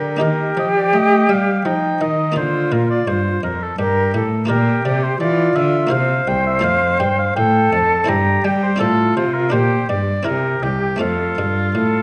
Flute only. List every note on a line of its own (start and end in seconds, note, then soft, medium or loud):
0.00 0.24 A#4 medium
0.22 1.67 G4 medium
1.66 2.37 D#4 medium
2.37 3.50 F4 medium
3.79 4.12 A#4 medium
4.15 4.49 A4 medium
4.49 5.19 G4 medium
5.20 5.91 F4 medium
5.93 7.34 C5 medium
7.38 8.10 A4 medium
8.09 8.80 G4 medium
8.80 9.54 F4 medium
9.53 10.00 G4 medium
10.26 11.02 G4 medium
11.01 11.68 A4 medium
11.75 12.02 A4 medium